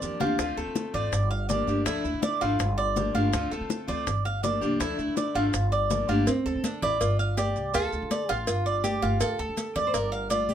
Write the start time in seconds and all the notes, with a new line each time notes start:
Already playing: D5
0.02 E2 F3 A#3 D4 G4, low conga, maracas
0.20 D2 F3 A#3 D4 F4 G4, low bongo, maracas
0.27 low conga
0.39 D2 D3 A3 C4 F4, high bongo, high conga, maracas
0.57 D2 A3 C4 F4 A4, high conga, maracas
0.66 D3
0.76 high bongo, high conga, maracas
0.94 G#1 A3 C4 F4 D5, high bongo, low conga, maracas
1.13 G1, muted steel-string acoustic guitar stroke, high bongo, high conga, maracas
1.31 F5, high bongo, high conga, maracas
1.49 F3 A#3 D4 G4 D5, high bongo, low bongo, high conga, maracas
1.67 G1 F3 A#3 D4 G4, high bongo, high conga, maracas
1.86 D2 D3 F3 A3 D4 E4, high bongo, high conga, maracas
2.04 D2 A3 D4 E4, high conga, maracas
2.14 D3
2.23 D5, high bongo, high conga, maracas
2.41 G#1 F3 A3 D4 E4 F4, high bongo, high conga, maracas
2.60 G1, muted steel-string acoustic guitar stroke, high bongo, high conga, maracas
2.78 D5, high bongo, high conga, maracas
2.96 F3 A#3 D4 G4, high bongo, low bongo, high conga, maracas
3.14 G1 F3 A#3 D4 F4 G4, high bongo, high conga, maracas
3.33 D2 D3 A3 C4 F4, high bongo, high conga, maracas
3.51 D2 A3 C4 F4 A4, high conga, maracas
3.61 D3
3.70 high bongo, high conga, maracas
3.87 D2 A3 C4 F4 D5, high bongo, low conga, maracas
4.07 G1, muted steel-string acoustic guitar stroke, high bongo, high conga, low conga, maracas
4.25 F5, high bongo, high conga, maracas
4.43 F3 A#3 D4 G4 D5, high bongo, low bongo, high conga, maracas
4.61 C2 F3 A#3 D4 G4, high bongo, maracas
4.80 D2 D3 F3 A3 D4 E4, high bongo, high conga, maracas
4.98 D2 A3 D4 E4, high conga, maracas
5.07 D3
5.17 D5, high bongo, high conga, maracas
5.35 G#1 F3 A3 D4 E4 F4, high bongo, high conga, maracas
5.54 G1, muted steel-string acoustic guitar stroke, high bongo, high conga, maracas
5.72 D5, high bongo, high conga, maracas
5.90 F3 A#3 D4 G4, high bongo, low bongo, high conga, maracas
6.09 G1 F3 A#3 D4 F4 G4, high bongo, high conga, maracas
6.27 D2 C4, cowbell, high conga, maracas
6.46 D2 A4, high conga, maracas
6.55 D3
6.64 D4, cowbell, high conga, maracas
6.82 A1 E4 D5, cowbell, low conga, maracas
7.00 G1 F4, cowbell, high conga, maracas
7.19 F5, high conga, maracas
7.37 G4 D5, cowbell, high conga, maracas
7.56 C2, maracas
7.74 D2 F4 A4, cowbell, high conga, maracas
7.93 D2, high conga, maracas
8.02 D3
8.11 D5, cowbell, high conga, maracas
8.29 A1 F4 G4, cowbell, high conga, maracas
8.47 G1 F4, cowbell, high conga, maracas
8.66 D5, high conga, maracas
8.84 G4, cowbell, high conga, maracas
9.02 G1 F4, cowbell, high conga, maracas
9.21 D2 A4, cowbell, maracas
9.39 D2 A4, high conga, maracas
9.48 D3
9.57 cowbell, high conga, maracas
9.75 D2 D5, cowbell, low conga, maracas
9.87 C5
9.94 G1 A#4, cowbell, high conga, maracas
10.12 F5, high conga, maracas
10.30 F4 D5, cowbell, high conga, maracas
10.49 A1 G4, high conga, maracas